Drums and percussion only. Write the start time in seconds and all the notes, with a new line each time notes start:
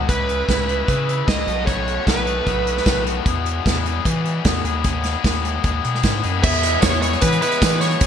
0.09 kick, closed hi-hat
0.29 closed hi-hat
0.49 kick, snare, closed hi-hat
0.69 closed hi-hat
0.88 kick, closed hi-hat
1.09 closed hi-hat
1.28 kick, snare, closed hi-hat
1.48 closed hi-hat
1.67 kick, closed hi-hat
1.88 closed hi-hat
2.07 kick, snare, closed hi-hat
2.27 closed hi-hat
2.47 kick, closed hi-hat
2.67 closed hi-hat
2.77 snare
2.86 kick, snare, closed hi-hat
3.07 closed hi-hat
3.26 kick, closed hi-hat
3.46 closed hi-hat
3.66 kick, snare, closed hi-hat
3.86 closed hi-hat
4.05 kick, closed hi-hat
4.25 closed hi-hat
4.45 kick, snare, closed hi-hat
4.65 closed hi-hat
4.84 kick, closed hi-hat
5.04 snare, closed hi-hat
5.24 kick, snare, closed hi-hat
5.45 closed hi-hat
5.64 kick, closed hi-hat
5.84 closed hi-hat
5.95 snare
6.03 kick, snare, closed hi-hat
6.23 closed hi-hat
6.44 kick, crash
6.53 closed hi-hat
6.63 closed hi-hat
6.82 kick, snare, closed hi-hat, tambourine
6.93 closed hi-hat
7.02 closed hi-hat
7.13 closed hi-hat
7.21 kick, closed hi-hat
7.32 closed hi-hat
7.42 closed hi-hat
7.51 closed hi-hat
7.62 kick, snare, closed hi-hat, tambourine
7.81 snare, closed hi-hat
7.91 closed hi-hat
8.01 kick, closed hi-hat